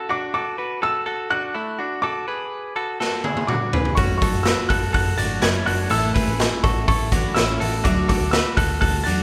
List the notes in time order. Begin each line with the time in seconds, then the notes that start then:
0.09 D4 F#4 D6
0.34 F#4 A4 D6
0.58 F#4 B4
0.82 F#4 A4 E6
1.06 F#4 A4
1.30 D4 F#4 F#6
1.54 A3 E4
1.79 D4 F#4
2.02 F#4 A4 D6
2.28 G#4 B4
2.76 F#4 A4
3.00 F#4 A4, snare
3.24 E4 G#4, high tom
3.37 high tom
3.47 D4 F#4 D6, mid tom
3.73 G#4 B4, floor tom
3.85 floor tom
3.95 F#1 F#2 C#3 F#3 A3 C#4 F#4 A4 C#6, kick, open hi-hat
4.18 C#6
4.22 F#4 A4, kick, hi-hat pedal, open hi-hat
4.33 F#1 F#3 A3 F#4 A4
4.43 F#4 B4 E6, snare, hi-hat pedal, open hi-hat
4.69 F#1 F#4 A4 F#6, kick, hi-hat pedal, open hi-hat
4.82 F#3 A3 F#4 A4
4.93 F#1 F#4 A4 F#6, kick, hi-hat pedal, open hi-hat
5.18 G#1 F#2 C#3 F#3 A3 D4 F#4 A4 A6, hi-hat pedal, open hi-hat
5.42 F#1 C#4 E4 G#6, snare, hi-hat pedal, open hi-hat
5.53 F#2 C#3 F#3 A3 F#4 A4
5.66 F#1 D4 F#4 F#6, hi-hat pedal, open hi-hat
5.89 A1 A2 E3 A3 C#4 E4 A4 E6, hi-hat pedal, open hi-hat
6.14 G#4 B4, kick, snare, hi-hat pedal, open hi-hat
6.27 A1 A3 C#4 E4 A4
6.39 snare, hi-hat pedal, open hi-hat
6.63 A1 F#4 A4 C#6, kick, hi-hat pedal, open hi-hat
6.75 A3 C#4 E4 A4
6.88 A1 E4 A4 C#6, kick, hi-hat pedal, open hi-hat
7.12 B1 A2 E3 A3 C#4 D4 E4 F#4 A4, kick, hi-hat pedal, open hi-hat
7.34 A1 C#4 E4 E6, snare, hi-hat pedal, open hi-hat
7.48 A2 E3 A3 C#4 E4 A4
7.60 A1 F#4 A4, hi-hat pedal, open hi-hat
7.84 D2 D3 F#3 A3 D4 F#4 A4 D6, kick, hi-hat pedal, open hi-hat
8.08 F#4 A4 D6, kick, snare, hi-hat pedal, open hi-hat
8.20 D2 A3 F#4 A4
8.31 F#4 B4 E6, snare, hi-hat pedal, open hi-hat
8.57 D2 F#4 A4 F#6, kick, hi-hat pedal, open hi-hat
8.68 A3 F#4 A4
8.81 D2 F#4 A4 F#6, kick, hi-hat pedal, open hi-hat
9.04 E2 D3 F#3 A3 D4 F#4 A4 A6, hi-hat pedal, open hi-hat